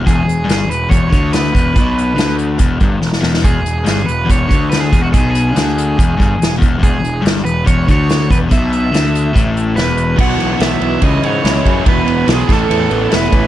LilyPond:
<<
  \new Staff \with { instrumentName = "Overdriven electric guitar" } { \time 4/4 \key e \major \tempo 4 = 142 gis'4. b'8 cis''8 cis''8 b'8 b'8~ | b'4. r2 r8 | gis'4. b'8 cis''8 cis''8 b'16 gis'8 fis'16 | gis'8 gis'2. r8 |
gis'4 r8 b'8 cis''8 cis''4 b'8 | e''2. b'4 | fis''4 e''4 dis''8 cis''4. | b'4 gis'8 a'4. b'4 | }
  \new Staff \with { instrumentName = "Overdriven electric guitar" } { \time 4/4 \key e \major r1 | r1 | r1 | r1 |
r1 | r1 | <b, e b e' fis'>2 <cis e gis cis' e'>2 | <e, b, e b e' fis'>4. <a, e a cis' a'>2~ <a, e a cis' a'>8 | }
  \new Staff \with { instrumentName = "Overdriven electric guitar" } { \clef bass \time 4/4 \key e \major e,8 e,8 g,8 e,8 e,8 d4 e,8 | b,4 d4 e,8 g,8 e,8 e,8 | e,8 e,8 g,8 e,8 e,8 d4 e,8 | b,4 d4 e,8 g,8 e,8 e,8 |
e,8 e,8 g,8 e,8 e,8 d4 e,8 | b,4 d4 a,4 e,4 | b,8 e8 e8 b8 cis8 gis8 e'8 cis'8 | e,8 b,8 e8 a,8 e8 b8 e'8 cis'8 | }
  \new Staff \with { instrumentName = "Picked electric bass" } { \clef bass \time 4/4 \key e \major e,,8 e,,8 g,,8 e,,8 e,,8 d,4 e,,8 | b,,4 d,4 e,,8 g,,8 e,,8 e,,8 | e,,8 e,,8 g,,8 e,,8 e,,8 d,4 e,,8 | b,,4 d,4 e,,8 g,,8 e,,8 e,,8 |
e,,8 e,,8 g,,8 e,,8 e,,8 d,4 e,,8 | b,,4 d,4 a,,4 e,,4 | b,,8 b,,8 b,,8 b,,8 cis,8 gis,8 cis,8 fis,8 | e,,8 e,,8 b,,8 a,,8 e,8 a,,8 e,,8 a,,8 | }
  \new DrumStaff \with { instrumentName = "Drums" } \drummode { \time 4/4 <hh bd>8 hh8 <hh sn>8 hh8 <hh bd>8 <hh bd>8 <hh sn>8 <hh bd>8 | <hh bd>8 hh8 <hh sn>8 hh8 <hh bd>8 <hh bd>8 sn16 sn16 sn16 sn16 | <hh bd>8 hh8 <hh sn>8 hh8 <hh bd>8 <hh bd>8 <hh sn>8 <hh bd>8 | <hh bd>8 hh8 <hh sn>8 hh8 <hh bd>8 <hh bd>8 <hh sn>8 <hh bd>8 |
<hh bd>8 hh8 <hh sn>8 hh8 <hh bd>8 <hh bd>8 <hh sn>8 <hh bd>8 | <hh bd>8 hh8 <hh sn>8 hh8 <hh bd>8 hh8 <hh sn>8 hh8 | <cymc bd>8 cymr8 <cymr sn>8 cymr8 <bd cymr>8 cymr8 <cymr sn>8 <bd cymr>8 | <bd cymr>8 cymr8 <cymr sn>8 <bd cymr sn>8 cymr8 cymr8 <cymr sn>8 <bd cymr>8 | }
>>